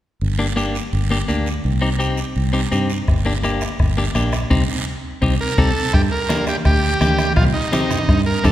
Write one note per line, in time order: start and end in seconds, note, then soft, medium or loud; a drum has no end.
0.21 0.79 G1 medium
0.21 long guiro medium
0.39 0.46 A#3 medium
0.39 0.46 D4 medium
0.39 0.46 G4 medium
0.56 0.76 A#3 medium
0.56 0.76 D4 medium
0.56 0.76 G4 loud
0.56 short guiro medium
0.75 short guiro medium
0.93 1.22 G1 medium
0.93 long guiro medium
1.11 1.17 A#3 medium
1.11 1.18 D4 medium
1.11 1.18 G4 medium
1.28 1.58 D2 medium
1.28 1.48 A#3 medium
1.28 1.48 D4 medium
1.28 1.48 G4 medium
1.28 short guiro medium
1.46 short guiro medium
1.64 2.22 C2 medium
1.64 long guiro medium
1.81 1.89 C4 medium
1.81 1.89 D#4 medium
1.81 1.89 G4 medium
1.99 2.19 C4 medium
1.99 2.19 D#4 medium
1.99 2.19 G4 medium
1.99 short guiro medium
2.17 short guiro medium
2.36 2.65 C2 medium
2.36 long guiro medium
2.53 2.60 C4 medium
2.53 2.60 D#4 soft
2.53 2.60 G4 medium
2.72 3.01 G2 medium
2.72 2.91 C4 medium
2.72 2.91 D#4 medium
2.72 2.91 G4 medium
2.72 short guiro medium
2.90 short guiro medium
3.08 3.65 G1 medium
3.08 bombo low medium
3.08 bombo rim medium
3.08 long guiro medium
3.25 3.32 A#3 medium
3.25 3.33 D4 medium
3.25 3.33 G4 medium
3.43 3.63 A#3 medium
3.43 3.63 D4 medium
3.43 3.63 G4 medium
3.43 bombo rim medium
3.43 short guiro medium
3.61 bombo rim medium
3.61 short guiro medium
3.79 4.08 G1 medium
3.79 bombo low medium
3.79 bombo rim medium
3.79 long guiro medium
3.97 4.04 A#3 medium
3.97 4.04 D4 medium
3.97 4.04 G4 medium
4.15 4.44 A#1 medium
4.15 4.34 A#3 medium
4.15 4.34 D4 medium
4.15 4.34 G4 medium
4.15 bombo rim medium
4.15 short guiro medium
4.32 bombo rim medium
4.32 short guiro medium
4.50 4.64 C2 medium
4.50 4.62 C4 medium
4.50 4.62 D#4 medium
4.50 4.62 G4 medium
4.50 bombo low medium
4.50 long guiro medium
5.22 5.36 C2 medium
5.22 5.34 C4 medium
5.22 5.34 D#4 medium
5.22 5.34 G4 medium
5.22 bombo low medium
5.22 long guiro medium
5.41 5.57 A#4 medium
5.58 5.71 C2 medium
5.58 5.70 C4 medium
5.58 5.70 D#4 medium
5.58 5.70 G4 medium
5.58 5.95 A4 medium
5.58 bombo low loud
5.93 6.08 G2 medium
5.93 6.02 G4 medium
5.93 bombo low medium
5.93 bombo rim medium
5.93 long guiro medium
6.12 6.45 A#4 medium
6.29 6.55 A#3 medium
6.29 6.55 D4 medium
6.29 6.55 G4 medium
6.29 bombo rim medium
6.29 high conga medium
6.29 short guiro medium
6.47 6.57 G4 medium
6.47 bombo rim medium
6.47 short guiro medium
6.65 6.94 D2 medium
6.65 7.33 G4 medium
6.65 bombo low medium
6.65 bombo rim medium
6.65 long guiro medium
6.84 high conga soft
7.01 7.38 D2 medium
7.01 7.26 A#3 medium
7.01 7.26 D4 medium
7.01 7.26 G4 medium
7.01 bombo rim medium
7.01 high conga medium
7.01 short guiro medium
7.18 bombo rim medium
7.18 short guiro medium
7.36 7.51 C2 medium
7.36 7.44 F4 medium
7.36 bombo low medium
7.36 bombo rim medium
7.36 long guiro medium
7.53 8.21 D#4 medium
7.72 7.98 C4 medium
7.72 7.98 D#4 medium
7.72 7.98 G4 medium
7.72 bombo rim medium
7.72 high conga medium
7.72 short guiro medium
7.91 bombo rim medium
7.91 low conga medium
7.91 short guiro medium
8.09 8.37 G2 loud
8.09 bombo low medium
8.09 bombo rim medium
8.09 high conga soft
8.09 long guiro medium
8.26 8.45 A#4 medium
8.26 high conga soft
8.44 8.52 G2 medium
8.44 8.52 C4 medium
8.44 8.52 D#4 medium
8.44 8.52 G4 medium
8.44 8.52 A4 medium
8.44 bombo low medium
8.44 bombo rim medium
8.44 high conga medium
8.44 low conga medium
8.44 short guiro medium